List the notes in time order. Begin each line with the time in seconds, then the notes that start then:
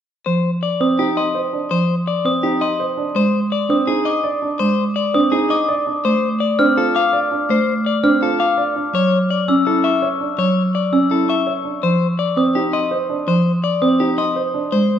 0.26 F3 C5
0.63 D5
0.80 C4 D#6
0.99 D#4 G4
1.17 D#5 C6
1.35 C5
1.53 D4
1.71 F3 C5
2.08 D5
2.25 C4 D#6
2.43 D#4 G4
2.61 D#5 C6
2.80 C5
2.97 D4
3.15 G#3 C5
3.52 D5
3.69 C4 D4 D#6
3.87 D#4 G#4
4.05 D#5 D6
4.24 D5
4.42 D4
4.59 G#3 C5
4.96 D5
5.14 C4 D4 D#6
5.32 D#4 G#4
5.50 D#5 D6
5.69 D5
5.87 D4
6.05 A3 C5
6.40 D5
6.59 C4 D4 F6
6.77 F4 A4
6.95 F5 D6
7.13 D5
7.31 D4
7.50 A3 C5
7.86 D5
8.03 C4 D4 F6
8.22 F4 A4
8.40 F5 D6
8.58 D5
8.76 D4
8.93 F#3 C#5
9.30 D5
9.48 C#4 E6
9.66 E4 A4
9.84 E5 C#6
10.02 C#5
10.21 D4
10.38 F#3 C#5
10.75 D5
10.92 C#4 E6
11.11 E4 A4
11.29 E5 C#6
11.47 C#5
11.65 D4
11.83 F3 C5
12.19 D5
12.37 C4 D#6
12.55 D#4 G4
12.73 D#5 C6
12.91 C5
13.10 D4
13.28 F3 C5
13.64 D5
13.82 C4 D#6
14.00 D#4 G4
14.18 D#5 C6
14.36 C5
14.54 D4
14.72 G#3 C5